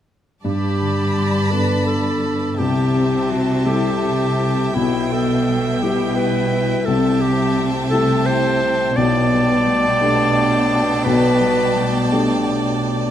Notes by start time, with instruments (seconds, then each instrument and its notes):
0.44 grand piano G2, cello section G2, harp G2, clarinet G4, violin section D5 A5 B5
0.81 harp D3
1.16 harp B3
1.51 grand piano B3 D4 A4, harp D4, clarinet B4
1.86 clarinet A4, harp A4
2.24 harp D4
2.58 grand piano C2, harp C3, cello section C3, clarinet G4, violin section E5 G5 A5
2.95 harp C4
3.30 harp G3, clarinet F#4
3.66 grand piano G3 E4 A4, harp E4, clarinet G4
4.02 harp A4
4.39 harp E4
4.75 grand piano B1, cello section B2, harp B2, clarinet E4, violin section G5
5.12 harp B3, clarinet A4
5.48 harp G3
5.82 grand piano G3 E4 G4, harp E4, clarinet G4
6.16 harp G4, clarinet B4
6.52 harp E4
6.85 grand piano C2, harp C3, cello section C3, clarinet A4, violin section E5 G5 A5
7.21 harp G3, clarinet G4
7.57 harp A3
7.90 grand piano A3 E4 G4, harp E4, clarinet A4
8.26 harp A4, clarinet C5
8.62 harp E4
8.97 grand piano B1, cello section B2, harp B2, clarinet D5, violin section D5 G5 A5
9.32 harp G3
9.67 harp A3
10.01 grand piano A3 D4 G4, harp D4
10.71 harp D4
11.04 grand piano B1, harp B2, clarinet B4
11.40 harp G3
11.75 harp A3
12.11 grand piano A3 D4 G4, harp D4
12.82 harp D4